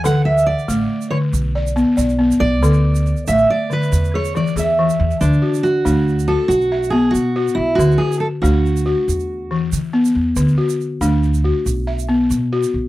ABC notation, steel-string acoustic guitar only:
X:1
M:12/8
L:1/8
Q:3/8=93
K:Dlyd
V:1 name="Steel-string acoustic guitar"
f e d3 c z4 z d- | d3 e d B2 c d e3 | D2 F3 A F2 G F2 E | F G A F6 z3 |
z12 |]